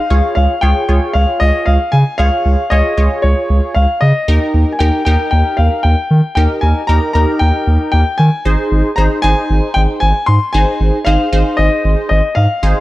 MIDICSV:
0, 0, Header, 1, 4, 480
1, 0, Start_track
1, 0, Tempo, 521739
1, 98, Time_signature, 4, 2, 24, 8
1, 11778, End_track
2, 0, Start_track
2, 0, Title_t, "Grand piano"
2, 0, Program_c, 0, 0
2, 0, Note_on_c, 0, 77, 103
2, 309, Note_off_c, 0, 77, 0
2, 323, Note_on_c, 0, 77, 92
2, 553, Note_off_c, 0, 77, 0
2, 564, Note_on_c, 0, 79, 97
2, 1016, Note_off_c, 0, 79, 0
2, 1044, Note_on_c, 0, 77, 98
2, 1286, Note_on_c, 0, 75, 100
2, 1298, Note_off_c, 0, 77, 0
2, 1523, Note_on_c, 0, 77, 100
2, 1539, Note_off_c, 0, 75, 0
2, 1764, Note_on_c, 0, 80, 102
2, 1778, Note_off_c, 0, 77, 0
2, 2004, Note_on_c, 0, 77, 105
2, 2018, Note_off_c, 0, 80, 0
2, 2485, Note_on_c, 0, 75, 93
2, 2505, Note_off_c, 0, 77, 0
2, 2964, Note_on_c, 0, 73, 91
2, 2986, Note_off_c, 0, 75, 0
2, 3417, Note_off_c, 0, 73, 0
2, 3445, Note_on_c, 0, 77, 92
2, 3686, Note_on_c, 0, 75, 97
2, 3699, Note_off_c, 0, 77, 0
2, 4137, Note_off_c, 0, 75, 0
2, 4346, Note_on_c, 0, 80, 68
2, 4406, Note_on_c, 0, 79, 86
2, 4412, Note_off_c, 0, 80, 0
2, 4633, Note_off_c, 0, 79, 0
2, 4647, Note_on_c, 0, 79, 86
2, 4869, Note_off_c, 0, 79, 0
2, 4883, Note_on_c, 0, 79, 91
2, 5123, Note_on_c, 0, 77, 90
2, 5138, Note_off_c, 0, 79, 0
2, 5364, Note_on_c, 0, 79, 89
2, 5377, Note_off_c, 0, 77, 0
2, 5830, Note_off_c, 0, 79, 0
2, 5844, Note_on_c, 0, 79, 94
2, 5899, Note_off_c, 0, 79, 0
2, 6082, Note_on_c, 0, 80, 92
2, 6322, Note_on_c, 0, 82, 99
2, 6337, Note_off_c, 0, 80, 0
2, 6549, Note_off_c, 0, 82, 0
2, 6563, Note_on_c, 0, 82, 93
2, 6793, Note_off_c, 0, 82, 0
2, 6802, Note_on_c, 0, 79, 97
2, 7269, Note_off_c, 0, 79, 0
2, 7283, Note_on_c, 0, 79, 94
2, 7522, Note_on_c, 0, 80, 96
2, 7538, Note_off_c, 0, 79, 0
2, 8241, Note_on_c, 0, 82, 95
2, 8272, Note_off_c, 0, 80, 0
2, 8297, Note_off_c, 0, 82, 0
2, 8483, Note_on_c, 0, 80, 116
2, 8961, Note_on_c, 0, 79, 104
2, 8985, Note_off_c, 0, 80, 0
2, 9017, Note_off_c, 0, 79, 0
2, 9201, Note_on_c, 0, 80, 101
2, 9443, Note_on_c, 0, 84, 103
2, 9457, Note_off_c, 0, 80, 0
2, 9684, Note_on_c, 0, 80, 104
2, 9697, Note_off_c, 0, 84, 0
2, 10162, Note_on_c, 0, 77, 98
2, 10185, Note_off_c, 0, 80, 0
2, 10616, Note_off_c, 0, 77, 0
2, 10642, Note_on_c, 0, 75, 93
2, 11110, Note_off_c, 0, 75, 0
2, 11124, Note_on_c, 0, 75, 87
2, 11362, Note_on_c, 0, 77, 99
2, 11378, Note_off_c, 0, 75, 0
2, 11778, Note_off_c, 0, 77, 0
2, 11778, End_track
3, 0, Start_track
3, 0, Title_t, "Analog polysynth"
3, 0, Program_c, 1, 90
3, 94, Note_on_c, 1, 65, 79
3, 94, Note_on_c, 1, 68, 70
3, 95, Note_on_c, 1, 73, 88
3, 505, Note_off_c, 1, 65, 0
3, 505, Note_off_c, 1, 68, 0
3, 505, Note_off_c, 1, 73, 0
3, 573, Note_on_c, 1, 65, 76
3, 573, Note_on_c, 1, 73, 84
3, 574, Note_on_c, 1, 68, 70
3, 780, Note_off_c, 1, 65, 0
3, 780, Note_off_c, 1, 68, 0
3, 780, Note_off_c, 1, 73, 0
3, 814, Note_on_c, 1, 73, 84
3, 815, Note_on_c, 1, 65, 77
3, 816, Note_on_c, 1, 68, 72
3, 1635, Note_off_c, 1, 65, 0
3, 1635, Note_off_c, 1, 68, 0
3, 1635, Note_off_c, 1, 73, 0
3, 2015, Note_on_c, 1, 65, 81
3, 2015, Note_on_c, 1, 68, 72
3, 2015, Note_on_c, 1, 73, 85
3, 2425, Note_off_c, 1, 65, 0
3, 2425, Note_off_c, 1, 73, 0
3, 2426, Note_off_c, 1, 68, 0
3, 2496, Note_on_c, 1, 65, 75
3, 2496, Note_on_c, 1, 68, 72
3, 2496, Note_on_c, 1, 73, 85
3, 2701, Note_off_c, 1, 65, 0
3, 2701, Note_off_c, 1, 68, 0
3, 2701, Note_off_c, 1, 73, 0
3, 2736, Note_on_c, 1, 73, 83
3, 2737, Note_on_c, 1, 65, 76
3, 2737, Note_on_c, 1, 68, 72
3, 3556, Note_off_c, 1, 65, 0
3, 3556, Note_off_c, 1, 68, 0
3, 3556, Note_off_c, 1, 73, 0
3, 3938, Note_on_c, 1, 63, 78
3, 3938, Note_on_c, 1, 67, 72
3, 3939, Note_on_c, 1, 70, 86
3, 4347, Note_off_c, 1, 63, 0
3, 4347, Note_off_c, 1, 67, 0
3, 4347, Note_off_c, 1, 70, 0
3, 4417, Note_on_c, 1, 63, 77
3, 4418, Note_on_c, 1, 67, 73
3, 4418, Note_on_c, 1, 70, 86
3, 4622, Note_off_c, 1, 63, 0
3, 4622, Note_off_c, 1, 67, 0
3, 4622, Note_off_c, 1, 70, 0
3, 4658, Note_on_c, 1, 63, 77
3, 4658, Note_on_c, 1, 67, 72
3, 4658, Note_on_c, 1, 70, 88
3, 5476, Note_off_c, 1, 63, 0
3, 5476, Note_off_c, 1, 70, 0
3, 5477, Note_off_c, 1, 67, 0
3, 5859, Note_on_c, 1, 67, 71
3, 5860, Note_on_c, 1, 63, 79
3, 5860, Note_on_c, 1, 70, 89
3, 6268, Note_off_c, 1, 63, 0
3, 6268, Note_off_c, 1, 67, 0
3, 6268, Note_off_c, 1, 70, 0
3, 6338, Note_on_c, 1, 63, 78
3, 6338, Note_on_c, 1, 67, 73
3, 6338, Note_on_c, 1, 70, 88
3, 6542, Note_off_c, 1, 63, 0
3, 6542, Note_off_c, 1, 67, 0
3, 6542, Note_off_c, 1, 70, 0
3, 6577, Note_on_c, 1, 63, 77
3, 6577, Note_on_c, 1, 67, 71
3, 6578, Note_on_c, 1, 70, 86
3, 7396, Note_off_c, 1, 63, 0
3, 7396, Note_off_c, 1, 67, 0
3, 7396, Note_off_c, 1, 70, 0
3, 7777, Note_on_c, 1, 72, 89
3, 7778, Note_on_c, 1, 63, 81
3, 7778, Note_on_c, 1, 68, 72
3, 8186, Note_off_c, 1, 72, 0
3, 8187, Note_off_c, 1, 63, 0
3, 8187, Note_off_c, 1, 68, 0
3, 8258, Note_on_c, 1, 63, 80
3, 8258, Note_on_c, 1, 68, 70
3, 8258, Note_on_c, 1, 72, 86
3, 8462, Note_off_c, 1, 68, 0
3, 8463, Note_off_c, 1, 63, 0
3, 8463, Note_off_c, 1, 72, 0
3, 8498, Note_on_c, 1, 63, 76
3, 8498, Note_on_c, 1, 68, 72
3, 8499, Note_on_c, 1, 72, 85
3, 9316, Note_off_c, 1, 63, 0
3, 9317, Note_off_c, 1, 68, 0
3, 9317, Note_off_c, 1, 72, 0
3, 9699, Note_on_c, 1, 63, 80
3, 9699, Note_on_c, 1, 68, 70
3, 9699, Note_on_c, 1, 72, 87
3, 10108, Note_off_c, 1, 63, 0
3, 10108, Note_off_c, 1, 68, 0
3, 10108, Note_off_c, 1, 72, 0
3, 10177, Note_on_c, 1, 68, 70
3, 10178, Note_on_c, 1, 63, 76
3, 10178, Note_on_c, 1, 72, 85
3, 10382, Note_off_c, 1, 68, 0
3, 10382, Note_off_c, 1, 72, 0
3, 10383, Note_off_c, 1, 63, 0
3, 10419, Note_on_c, 1, 63, 77
3, 10419, Note_on_c, 1, 68, 69
3, 10419, Note_on_c, 1, 72, 87
3, 11237, Note_off_c, 1, 63, 0
3, 11237, Note_off_c, 1, 68, 0
3, 11237, Note_off_c, 1, 72, 0
3, 11617, Note_on_c, 1, 63, 81
3, 11618, Note_on_c, 1, 68, 73
3, 11618, Note_on_c, 1, 72, 88
3, 11778, Note_off_c, 1, 63, 0
3, 11778, Note_off_c, 1, 68, 0
3, 11778, Note_off_c, 1, 72, 0
3, 11778, End_track
4, 0, Start_track
4, 0, Title_t, "Sub bass"
4, 0, Program_c, 2, 38
4, 96, Note_on_c, 2, 37, 116
4, 196, Note_off_c, 2, 37, 0
4, 336, Note_on_c, 2, 37, 107
4, 436, Note_off_c, 2, 37, 0
4, 576, Note_on_c, 2, 37, 104
4, 676, Note_off_c, 2, 37, 0
4, 816, Note_on_c, 2, 37, 108
4, 916, Note_off_c, 2, 37, 0
4, 1055, Note_on_c, 2, 37, 104
4, 1155, Note_off_c, 2, 37, 0
4, 1296, Note_on_c, 2, 37, 104
4, 1396, Note_off_c, 2, 37, 0
4, 1536, Note_on_c, 2, 37, 111
4, 1636, Note_off_c, 2, 37, 0
4, 1775, Note_on_c, 2, 49, 97
4, 1875, Note_off_c, 2, 49, 0
4, 2015, Note_on_c, 2, 37, 121
4, 2115, Note_off_c, 2, 37, 0
4, 2256, Note_on_c, 2, 37, 103
4, 2356, Note_off_c, 2, 37, 0
4, 2496, Note_on_c, 2, 37, 103
4, 2596, Note_off_c, 2, 37, 0
4, 2737, Note_on_c, 2, 37, 103
4, 2836, Note_off_c, 2, 37, 0
4, 2976, Note_on_c, 2, 37, 107
4, 3076, Note_off_c, 2, 37, 0
4, 3217, Note_on_c, 2, 37, 104
4, 3317, Note_off_c, 2, 37, 0
4, 3457, Note_on_c, 2, 37, 111
4, 3556, Note_off_c, 2, 37, 0
4, 3697, Note_on_c, 2, 49, 102
4, 3796, Note_off_c, 2, 49, 0
4, 3938, Note_on_c, 2, 39, 105
4, 4037, Note_off_c, 2, 39, 0
4, 4176, Note_on_c, 2, 39, 102
4, 4276, Note_off_c, 2, 39, 0
4, 4417, Note_on_c, 2, 39, 103
4, 4516, Note_off_c, 2, 39, 0
4, 4657, Note_on_c, 2, 39, 96
4, 4756, Note_off_c, 2, 39, 0
4, 4897, Note_on_c, 2, 39, 103
4, 4996, Note_off_c, 2, 39, 0
4, 5136, Note_on_c, 2, 39, 98
4, 5236, Note_off_c, 2, 39, 0
4, 5376, Note_on_c, 2, 39, 112
4, 5476, Note_off_c, 2, 39, 0
4, 5617, Note_on_c, 2, 51, 99
4, 5716, Note_off_c, 2, 51, 0
4, 5855, Note_on_c, 2, 39, 109
4, 5955, Note_off_c, 2, 39, 0
4, 6096, Note_on_c, 2, 39, 110
4, 6196, Note_off_c, 2, 39, 0
4, 6337, Note_on_c, 2, 39, 105
4, 6436, Note_off_c, 2, 39, 0
4, 6575, Note_on_c, 2, 39, 102
4, 6675, Note_off_c, 2, 39, 0
4, 6816, Note_on_c, 2, 39, 104
4, 6916, Note_off_c, 2, 39, 0
4, 7057, Note_on_c, 2, 39, 104
4, 7156, Note_off_c, 2, 39, 0
4, 7297, Note_on_c, 2, 39, 111
4, 7396, Note_off_c, 2, 39, 0
4, 7536, Note_on_c, 2, 51, 105
4, 7636, Note_off_c, 2, 51, 0
4, 7776, Note_on_c, 2, 32, 113
4, 7876, Note_off_c, 2, 32, 0
4, 8016, Note_on_c, 2, 32, 105
4, 8116, Note_off_c, 2, 32, 0
4, 8257, Note_on_c, 2, 32, 109
4, 8356, Note_off_c, 2, 32, 0
4, 8496, Note_on_c, 2, 32, 95
4, 8596, Note_off_c, 2, 32, 0
4, 8738, Note_on_c, 2, 32, 102
4, 8837, Note_off_c, 2, 32, 0
4, 8977, Note_on_c, 2, 32, 110
4, 9076, Note_off_c, 2, 32, 0
4, 9218, Note_on_c, 2, 32, 104
4, 9317, Note_off_c, 2, 32, 0
4, 9458, Note_on_c, 2, 44, 107
4, 9557, Note_off_c, 2, 44, 0
4, 9698, Note_on_c, 2, 32, 112
4, 9797, Note_off_c, 2, 32, 0
4, 9936, Note_on_c, 2, 32, 105
4, 10036, Note_off_c, 2, 32, 0
4, 10178, Note_on_c, 2, 32, 102
4, 10277, Note_off_c, 2, 32, 0
4, 10418, Note_on_c, 2, 32, 105
4, 10517, Note_off_c, 2, 32, 0
4, 10657, Note_on_c, 2, 32, 105
4, 10756, Note_off_c, 2, 32, 0
4, 10897, Note_on_c, 2, 32, 102
4, 10996, Note_off_c, 2, 32, 0
4, 11137, Note_on_c, 2, 32, 117
4, 11236, Note_off_c, 2, 32, 0
4, 11376, Note_on_c, 2, 44, 93
4, 11476, Note_off_c, 2, 44, 0
4, 11617, Note_on_c, 2, 32, 118
4, 11716, Note_off_c, 2, 32, 0
4, 11778, End_track
0, 0, End_of_file